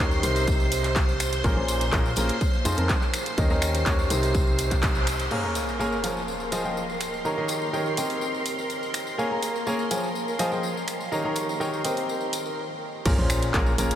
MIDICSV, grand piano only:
0, 0, Header, 1, 2, 480
1, 0, Start_track
1, 0, Tempo, 483871
1, 1431, Time_signature, 4, 2, 24, 8
1, 13841, End_track
2, 0, Start_track
2, 0, Title_t, "Grand piano"
2, 0, Program_c, 0, 0
2, 0, Note_on_c, 0, 51, 86
2, 0, Note_on_c, 0, 61, 77
2, 0, Note_on_c, 0, 63, 79
2, 0, Note_on_c, 0, 67, 77
2, 0, Note_on_c, 0, 70, 78
2, 0, Note_on_c, 0, 73, 93
2, 203, Note_off_c, 0, 51, 0
2, 203, Note_off_c, 0, 61, 0
2, 203, Note_off_c, 0, 63, 0
2, 203, Note_off_c, 0, 67, 0
2, 203, Note_off_c, 0, 70, 0
2, 203, Note_off_c, 0, 73, 0
2, 229, Note_on_c, 0, 48, 80
2, 229, Note_on_c, 0, 60, 73
2, 229, Note_on_c, 0, 63, 70
2, 229, Note_on_c, 0, 67, 73
2, 229, Note_on_c, 0, 70, 72
2, 229, Note_on_c, 0, 72, 87
2, 1403, Note_off_c, 0, 48, 0
2, 1403, Note_off_c, 0, 60, 0
2, 1403, Note_off_c, 0, 63, 0
2, 1403, Note_off_c, 0, 67, 0
2, 1403, Note_off_c, 0, 70, 0
2, 1403, Note_off_c, 0, 72, 0
2, 1429, Note_on_c, 0, 46, 86
2, 1429, Note_on_c, 0, 61, 82
2, 1430, Note_on_c, 0, 58, 83
2, 1430, Note_on_c, 0, 65, 80
2, 1430, Note_on_c, 0, 68, 81
2, 1430, Note_on_c, 0, 70, 99
2, 1537, Note_off_c, 0, 46, 0
2, 1537, Note_off_c, 0, 58, 0
2, 1537, Note_off_c, 0, 61, 0
2, 1537, Note_off_c, 0, 65, 0
2, 1537, Note_off_c, 0, 68, 0
2, 1537, Note_off_c, 0, 70, 0
2, 1555, Note_on_c, 0, 46, 71
2, 1555, Note_on_c, 0, 58, 65
2, 1555, Note_on_c, 0, 61, 68
2, 1555, Note_on_c, 0, 65, 66
2, 1555, Note_on_c, 0, 68, 67
2, 1555, Note_on_c, 0, 72, 82
2, 1883, Note_off_c, 0, 46, 0
2, 1883, Note_off_c, 0, 58, 0
2, 1883, Note_off_c, 0, 61, 0
2, 1883, Note_off_c, 0, 65, 0
2, 1883, Note_off_c, 0, 68, 0
2, 1883, Note_off_c, 0, 72, 0
2, 1910, Note_on_c, 0, 46, 95
2, 1910, Note_on_c, 0, 68, 88
2, 1910, Note_on_c, 0, 70, 105
2, 1911, Note_on_c, 0, 58, 89
2, 1911, Note_on_c, 0, 61, 87
2, 1911, Note_on_c, 0, 65, 89
2, 2069, Note_off_c, 0, 46, 0
2, 2069, Note_off_c, 0, 61, 0
2, 2069, Note_off_c, 0, 65, 0
2, 2069, Note_off_c, 0, 68, 0
2, 2069, Note_off_c, 0, 70, 0
2, 2070, Note_off_c, 0, 58, 0
2, 2150, Note_on_c, 0, 58, 86
2, 2150, Note_on_c, 0, 61, 75
2, 2150, Note_on_c, 0, 65, 77
2, 2150, Note_on_c, 0, 68, 80
2, 2150, Note_on_c, 0, 70, 90
2, 2309, Note_off_c, 0, 58, 0
2, 2309, Note_off_c, 0, 61, 0
2, 2309, Note_off_c, 0, 65, 0
2, 2309, Note_off_c, 0, 68, 0
2, 2309, Note_off_c, 0, 70, 0
2, 2629, Note_on_c, 0, 53, 94
2, 2629, Note_on_c, 0, 60, 90
2, 2629, Note_on_c, 0, 65, 88
2, 2629, Note_on_c, 0, 68, 88
2, 2629, Note_on_c, 0, 72, 109
2, 2630, Note_on_c, 0, 63, 87
2, 2725, Note_off_c, 0, 53, 0
2, 2725, Note_off_c, 0, 65, 0
2, 2726, Note_off_c, 0, 60, 0
2, 2726, Note_off_c, 0, 63, 0
2, 2726, Note_off_c, 0, 68, 0
2, 2726, Note_off_c, 0, 72, 0
2, 2754, Note_on_c, 0, 68, 68
2, 2755, Note_on_c, 0, 53, 78
2, 2755, Note_on_c, 0, 60, 70
2, 2755, Note_on_c, 0, 63, 69
2, 2755, Note_on_c, 0, 65, 69
2, 2755, Note_on_c, 0, 70, 84
2, 2906, Note_off_c, 0, 53, 0
2, 2906, Note_off_c, 0, 60, 0
2, 2906, Note_off_c, 0, 63, 0
2, 2906, Note_off_c, 0, 68, 0
2, 2907, Note_off_c, 0, 65, 0
2, 2907, Note_off_c, 0, 70, 0
2, 3350, Note_on_c, 0, 51, 86
2, 3350, Note_on_c, 0, 61, 78
2, 3350, Note_on_c, 0, 63, 78
2, 3350, Note_on_c, 0, 67, 77
2, 3350, Note_on_c, 0, 70, 80
2, 3350, Note_on_c, 0, 75, 91
2, 3457, Note_off_c, 0, 51, 0
2, 3457, Note_off_c, 0, 61, 0
2, 3457, Note_off_c, 0, 63, 0
2, 3457, Note_off_c, 0, 67, 0
2, 3457, Note_off_c, 0, 70, 0
2, 3457, Note_off_c, 0, 75, 0
2, 3475, Note_on_c, 0, 51, 88
2, 3475, Note_on_c, 0, 61, 80
2, 3475, Note_on_c, 0, 67, 80
2, 3475, Note_on_c, 0, 75, 98
2, 3476, Note_on_c, 0, 63, 81
2, 3476, Note_on_c, 0, 70, 82
2, 3803, Note_off_c, 0, 51, 0
2, 3803, Note_off_c, 0, 61, 0
2, 3803, Note_off_c, 0, 63, 0
2, 3803, Note_off_c, 0, 67, 0
2, 3803, Note_off_c, 0, 70, 0
2, 3803, Note_off_c, 0, 75, 0
2, 3829, Note_on_c, 0, 51, 84
2, 3829, Note_on_c, 0, 61, 80
2, 3829, Note_on_c, 0, 67, 78
2, 3829, Note_on_c, 0, 73, 96
2, 3830, Note_on_c, 0, 63, 79
2, 3830, Note_on_c, 0, 70, 79
2, 4042, Note_off_c, 0, 51, 0
2, 4043, Note_off_c, 0, 61, 0
2, 4043, Note_off_c, 0, 63, 0
2, 4043, Note_off_c, 0, 67, 0
2, 4043, Note_off_c, 0, 70, 0
2, 4043, Note_off_c, 0, 73, 0
2, 4069, Note_on_c, 0, 63, 72
2, 4069, Note_on_c, 0, 70, 72
2, 4070, Note_on_c, 0, 48, 81
2, 4070, Note_on_c, 0, 60, 74
2, 4070, Note_on_c, 0, 67, 73
2, 4070, Note_on_c, 0, 72, 89
2, 5243, Note_off_c, 0, 48, 0
2, 5243, Note_off_c, 0, 60, 0
2, 5243, Note_off_c, 0, 63, 0
2, 5243, Note_off_c, 0, 67, 0
2, 5243, Note_off_c, 0, 70, 0
2, 5243, Note_off_c, 0, 72, 0
2, 5269, Note_on_c, 0, 58, 79
2, 5269, Note_on_c, 0, 68, 71
2, 5269, Note_on_c, 0, 70, 71
2, 5269, Note_on_c, 0, 80, 84
2, 5270, Note_on_c, 0, 73, 71
2, 5270, Note_on_c, 0, 77, 71
2, 5377, Note_off_c, 0, 58, 0
2, 5377, Note_off_c, 0, 68, 0
2, 5377, Note_off_c, 0, 70, 0
2, 5377, Note_off_c, 0, 73, 0
2, 5377, Note_off_c, 0, 77, 0
2, 5377, Note_off_c, 0, 80, 0
2, 5396, Note_on_c, 0, 58, 62
2, 5396, Note_on_c, 0, 68, 59
2, 5396, Note_on_c, 0, 70, 57
2, 5396, Note_on_c, 0, 73, 58
2, 5396, Note_on_c, 0, 77, 56
2, 5396, Note_on_c, 0, 82, 70
2, 5723, Note_off_c, 0, 58, 0
2, 5723, Note_off_c, 0, 68, 0
2, 5723, Note_off_c, 0, 70, 0
2, 5723, Note_off_c, 0, 73, 0
2, 5723, Note_off_c, 0, 77, 0
2, 5723, Note_off_c, 0, 82, 0
2, 5748, Note_on_c, 0, 58, 86
2, 5748, Note_on_c, 0, 68, 78
2, 5748, Note_on_c, 0, 70, 81
2, 5748, Note_on_c, 0, 77, 78
2, 5748, Note_on_c, 0, 80, 94
2, 5749, Note_on_c, 0, 73, 79
2, 5908, Note_off_c, 0, 58, 0
2, 5908, Note_off_c, 0, 68, 0
2, 5908, Note_off_c, 0, 70, 0
2, 5908, Note_off_c, 0, 77, 0
2, 5908, Note_off_c, 0, 80, 0
2, 5909, Note_off_c, 0, 73, 0
2, 5989, Note_on_c, 0, 53, 76
2, 5989, Note_on_c, 0, 68, 68
2, 5989, Note_on_c, 0, 70, 69
2, 5989, Note_on_c, 0, 73, 68
2, 5989, Note_on_c, 0, 77, 70
2, 5989, Note_on_c, 0, 80, 81
2, 6148, Note_off_c, 0, 53, 0
2, 6148, Note_off_c, 0, 68, 0
2, 6148, Note_off_c, 0, 80, 0
2, 6149, Note_off_c, 0, 70, 0
2, 6149, Note_off_c, 0, 73, 0
2, 6149, Note_off_c, 0, 77, 0
2, 6469, Note_on_c, 0, 53, 86
2, 6469, Note_on_c, 0, 68, 79
2, 6469, Note_on_c, 0, 72, 76
2, 6469, Note_on_c, 0, 77, 77
2, 6469, Note_on_c, 0, 80, 96
2, 6470, Note_on_c, 0, 75, 78
2, 6565, Note_off_c, 0, 72, 0
2, 6566, Note_off_c, 0, 53, 0
2, 6566, Note_off_c, 0, 68, 0
2, 6566, Note_off_c, 0, 75, 0
2, 6566, Note_off_c, 0, 77, 0
2, 6566, Note_off_c, 0, 80, 0
2, 6595, Note_on_c, 0, 53, 67
2, 6595, Note_on_c, 0, 68, 62
2, 6595, Note_on_c, 0, 72, 61
2, 6595, Note_on_c, 0, 75, 62
2, 6595, Note_on_c, 0, 77, 62
2, 6595, Note_on_c, 0, 79, 74
2, 6746, Note_off_c, 0, 68, 0
2, 6746, Note_off_c, 0, 77, 0
2, 6746, Note_off_c, 0, 79, 0
2, 6747, Note_off_c, 0, 53, 0
2, 6747, Note_off_c, 0, 72, 0
2, 6747, Note_off_c, 0, 75, 0
2, 7190, Note_on_c, 0, 51, 74
2, 7190, Note_on_c, 0, 82, 82
2, 7191, Note_on_c, 0, 67, 71
2, 7191, Note_on_c, 0, 70, 68
2, 7191, Note_on_c, 0, 73, 69
2, 7191, Note_on_c, 0, 75, 71
2, 7297, Note_off_c, 0, 51, 0
2, 7297, Note_off_c, 0, 73, 0
2, 7297, Note_off_c, 0, 75, 0
2, 7297, Note_off_c, 0, 82, 0
2, 7298, Note_off_c, 0, 67, 0
2, 7298, Note_off_c, 0, 70, 0
2, 7316, Note_on_c, 0, 51, 77
2, 7316, Note_on_c, 0, 67, 71
2, 7316, Note_on_c, 0, 70, 74
2, 7316, Note_on_c, 0, 73, 72
2, 7316, Note_on_c, 0, 82, 86
2, 7317, Note_on_c, 0, 75, 72
2, 7643, Note_off_c, 0, 51, 0
2, 7643, Note_off_c, 0, 67, 0
2, 7643, Note_off_c, 0, 70, 0
2, 7643, Note_off_c, 0, 73, 0
2, 7644, Note_off_c, 0, 75, 0
2, 7644, Note_off_c, 0, 82, 0
2, 7670, Note_on_c, 0, 51, 77
2, 7670, Note_on_c, 0, 67, 72
2, 7670, Note_on_c, 0, 70, 70
2, 7670, Note_on_c, 0, 73, 69
2, 7670, Note_on_c, 0, 75, 71
2, 7670, Note_on_c, 0, 79, 86
2, 7883, Note_off_c, 0, 51, 0
2, 7883, Note_off_c, 0, 67, 0
2, 7883, Note_off_c, 0, 70, 0
2, 7883, Note_off_c, 0, 73, 0
2, 7883, Note_off_c, 0, 75, 0
2, 7883, Note_off_c, 0, 79, 0
2, 7911, Note_on_c, 0, 70, 67
2, 7912, Note_on_c, 0, 60, 73
2, 7912, Note_on_c, 0, 67, 68
2, 7912, Note_on_c, 0, 72, 67
2, 7912, Note_on_c, 0, 75, 66
2, 7912, Note_on_c, 0, 79, 79
2, 9084, Note_off_c, 0, 60, 0
2, 9084, Note_off_c, 0, 67, 0
2, 9084, Note_off_c, 0, 70, 0
2, 9084, Note_off_c, 0, 72, 0
2, 9084, Note_off_c, 0, 75, 0
2, 9084, Note_off_c, 0, 79, 0
2, 9109, Note_on_c, 0, 58, 81
2, 9109, Note_on_c, 0, 68, 76
2, 9109, Note_on_c, 0, 77, 76
2, 9109, Note_on_c, 0, 80, 88
2, 9110, Note_on_c, 0, 70, 74
2, 9110, Note_on_c, 0, 73, 76
2, 9217, Note_off_c, 0, 58, 0
2, 9217, Note_off_c, 0, 68, 0
2, 9217, Note_off_c, 0, 70, 0
2, 9217, Note_off_c, 0, 73, 0
2, 9217, Note_off_c, 0, 77, 0
2, 9217, Note_off_c, 0, 80, 0
2, 9235, Note_on_c, 0, 68, 60
2, 9235, Note_on_c, 0, 70, 60
2, 9235, Note_on_c, 0, 73, 60
2, 9236, Note_on_c, 0, 58, 67
2, 9236, Note_on_c, 0, 77, 62
2, 9236, Note_on_c, 0, 82, 72
2, 9563, Note_off_c, 0, 58, 0
2, 9563, Note_off_c, 0, 68, 0
2, 9563, Note_off_c, 0, 70, 0
2, 9563, Note_off_c, 0, 73, 0
2, 9563, Note_off_c, 0, 77, 0
2, 9563, Note_off_c, 0, 82, 0
2, 9590, Note_on_c, 0, 58, 89
2, 9590, Note_on_c, 0, 68, 82
2, 9590, Note_on_c, 0, 70, 82
2, 9590, Note_on_c, 0, 73, 82
2, 9590, Note_on_c, 0, 77, 82
2, 9590, Note_on_c, 0, 80, 100
2, 9749, Note_off_c, 0, 58, 0
2, 9749, Note_off_c, 0, 68, 0
2, 9749, Note_off_c, 0, 70, 0
2, 9749, Note_off_c, 0, 73, 0
2, 9749, Note_off_c, 0, 77, 0
2, 9749, Note_off_c, 0, 80, 0
2, 9828, Note_on_c, 0, 77, 71
2, 9828, Note_on_c, 0, 80, 86
2, 9829, Note_on_c, 0, 53, 78
2, 9829, Note_on_c, 0, 68, 73
2, 9829, Note_on_c, 0, 70, 70
2, 9829, Note_on_c, 0, 73, 73
2, 9988, Note_off_c, 0, 68, 0
2, 9988, Note_off_c, 0, 70, 0
2, 9988, Note_off_c, 0, 77, 0
2, 9988, Note_off_c, 0, 80, 0
2, 9989, Note_off_c, 0, 53, 0
2, 9989, Note_off_c, 0, 73, 0
2, 10308, Note_on_c, 0, 68, 81
2, 10308, Note_on_c, 0, 72, 81
2, 10308, Note_on_c, 0, 77, 83
2, 10308, Note_on_c, 0, 80, 99
2, 10309, Note_on_c, 0, 53, 92
2, 10309, Note_on_c, 0, 75, 81
2, 10405, Note_off_c, 0, 53, 0
2, 10405, Note_off_c, 0, 68, 0
2, 10405, Note_off_c, 0, 72, 0
2, 10405, Note_off_c, 0, 75, 0
2, 10405, Note_off_c, 0, 77, 0
2, 10405, Note_off_c, 0, 80, 0
2, 10435, Note_on_c, 0, 53, 70
2, 10435, Note_on_c, 0, 72, 65
2, 10435, Note_on_c, 0, 75, 65
2, 10435, Note_on_c, 0, 77, 66
2, 10435, Note_on_c, 0, 79, 77
2, 10436, Note_on_c, 0, 68, 64
2, 10586, Note_off_c, 0, 75, 0
2, 10586, Note_off_c, 0, 79, 0
2, 10587, Note_off_c, 0, 53, 0
2, 10587, Note_off_c, 0, 68, 0
2, 10587, Note_off_c, 0, 72, 0
2, 10587, Note_off_c, 0, 77, 0
2, 11029, Note_on_c, 0, 51, 78
2, 11029, Note_on_c, 0, 67, 73
2, 11029, Note_on_c, 0, 73, 72
2, 11029, Note_on_c, 0, 75, 71
2, 11029, Note_on_c, 0, 82, 86
2, 11030, Note_on_c, 0, 70, 70
2, 11137, Note_off_c, 0, 51, 0
2, 11137, Note_off_c, 0, 67, 0
2, 11137, Note_off_c, 0, 70, 0
2, 11137, Note_off_c, 0, 73, 0
2, 11137, Note_off_c, 0, 75, 0
2, 11137, Note_off_c, 0, 82, 0
2, 11154, Note_on_c, 0, 51, 81
2, 11154, Note_on_c, 0, 67, 73
2, 11154, Note_on_c, 0, 70, 72
2, 11154, Note_on_c, 0, 73, 72
2, 11154, Note_on_c, 0, 82, 90
2, 11155, Note_on_c, 0, 75, 73
2, 11482, Note_off_c, 0, 51, 0
2, 11482, Note_off_c, 0, 67, 0
2, 11482, Note_off_c, 0, 70, 0
2, 11482, Note_off_c, 0, 73, 0
2, 11482, Note_off_c, 0, 82, 0
2, 11483, Note_off_c, 0, 75, 0
2, 11508, Note_on_c, 0, 67, 73
2, 11508, Note_on_c, 0, 70, 73
2, 11508, Note_on_c, 0, 73, 74
2, 11508, Note_on_c, 0, 75, 74
2, 11508, Note_on_c, 0, 79, 87
2, 11509, Note_on_c, 0, 51, 81
2, 11722, Note_off_c, 0, 51, 0
2, 11722, Note_off_c, 0, 67, 0
2, 11722, Note_off_c, 0, 70, 0
2, 11722, Note_off_c, 0, 73, 0
2, 11722, Note_off_c, 0, 75, 0
2, 11722, Note_off_c, 0, 79, 0
2, 11749, Note_on_c, 0, 67, 67
2, 11749, Note_on_c, 0, 70, 69
2, 11749, Note_on_c, 0, 72, 69
2, 11749, Note_on_c, 0, 75, 71
2, 11749, Note_on_c, 0, 79, 82
2, 11750, Note_on_c, 0, 60, 76
2, 12470, Note_off_c, 0, 60, 0
2, 12470, Note_off_c, 0, 67, 0
2, 12470, Note_off_c, 0, 70, 0
2, 12470, Note_off_c, 0, 72, 0
2, 12470, Note_off_c, 0, 75, 0
2, 12470, Note_off_c, 0, 79, 0
2, 12950, Note_on_c, 0, 46, 90
2, 12950, Note_on_c, 0, 58, 84
2, 12950, Note_on_c, 0, 61, 83
2, 12950, Note_on_c, 0, 65, 83
2, 12950, Note_on_c, 0, 68, 84
2, 12950, Note_on_c, 0, 70, 99
2, 13057, Note_off_c, 0, 46, 0
2, 13057, Note_off_c, 0, 58, 0
2, 13057, Note_off_c, 0, 61, 0
2, 13057, Note_off_c, 0, 65, 0
2, 13057, Note_off_c, 0, 68, 0
2, 13057, Note_off_c, 0, 70, 0
2, 13075, Note_on_c, 0, 46, 74
2, 13075, Note_on_c, 0, 58, 66
2, 13075, Note_on_c, 0, 61, 66
2, 13075, Note_on_c, 0, 65, 68
2, 13075, Note_on_c, 0, 68, 68
2, 13076, Note_on_c, 0, 72, 81
2, 13403, Note_off_c, 0, 46, 0
2, 13403, Note_off_c, 0, 58, 0
2, 13403, Note_off_c, 0, 61, 0
2, 13403, Note_off_c, 0, 65, 0
2, 13403, Note_off_c, 0, 68, 0
2, 13403, Note_off_c, 0, 72, 0
2, 13429, Note_on_c, 0, 61, 88
2, 13429, Note_on_c, 0, 70, 107
2, 13430, Note_on_c, 0, 46, 97
2, 13430, Note_on_c, 0, 58, 90
2, 13430, Note_on_c, 0, 65, 90
2, 13430, Note_on_c, 0, 68, 91
2, 13589, Note_off_c, 0, 46, 0
2, 13589, Note_off_c, 0, 58, 0
2, 13589, Note_off_c, 0, 61, 0
2, 13589, Note_off_c, 0, 65, 0
2, 13589, Note_off_c, 0, 68, 0
2, 13589, Note_off_c, 0, 70, 0
2, 13669, Note_on_c, 0, 65, 79
2, 13670, Note_on_c, 0, 58, 88
2, 13670, Note_on_c, 0, 61, 79
2, 13670, Note_on_c, 0, 68, 77
2, 13670, Note_on_c, 0, 70, 95
2, 13829, Note_off_c, 0, 58, 0
2, 13829, Note_off_c, 0, 61, 0
2, 13829, Note_off_c, 0, 65, 0
2, 13829, Note_off_c, 0, 68, 0
2, 13829, Note_off_c, 0, 70, 0
2, 13841, End_track
0, 0, End_of_file